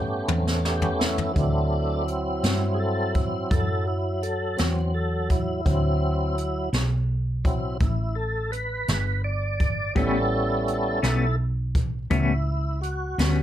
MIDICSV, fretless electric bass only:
0, 0, Header, 1, 2, 480
1, 0, Start_track
1, 0, Tempo, 716846
1, 908, Time_signature, 12, 3, 24, 8
1, 8991, End_track
2, 0, Start_track
2, 0, Title_t, "Fretless electric bass"
2, 0, Program_c, 0, 35
2, 0, Note_on_c, 0, 43, 76
2, 168, Note_off_c, 0, 43, 0
2, 190, Note_on_c, 0, 40, 65
2, 888, Note_off_c, 0, 40, 0
2, 911, Note_on_c, 0, 38, 60
2, 1609, Note_off_c, 0, 38, 0
2, 1630, Note_on_c, 0, 43, 75
2, 2328, Note_off_c, 0, 43, 0
2, 2351, Note_on_c, 0, 42, 72
2, 3049, Note_off_c, 0, 42, 0
2, 3076, Note_on_c, 0, 40, 83
2, 3772, Note_off_c, 0, 40, 0
2, 3791, Note_on_c, 0, 38, 73
2, 4489, Note_off_c, 0, 38, 0
2, 4505, Note_on_c, 0, 35, 83
2, 5206, Note_off_c, 0, 35, 0
2, 5226, Note_on_c, 0, 33, 79
2, 5927, Note_off_c, 0, 33, 0
2, 5949, Note_on_c, 0, 31, 84
2, 6648, Note_off_c, 0, 31, 0
2, 6670, Note_on_c, 0, 33, 77
2, 7368, Note_off_c, 0, 33, 0
2, 7386, Note_on_c, 0, 35, 83
2, 8086, Note_off_c, 0, 35, 0
2, 8107, Note_on_c, 0, 37, 77
2, 8806, Note_off_c, 0, 37, 0
2, 8827, Note_on_c, 0, 38, 79
2, 8991, Note_off_c, 0, 38, 0
2, 8991, End_track
0, 0, End_of_file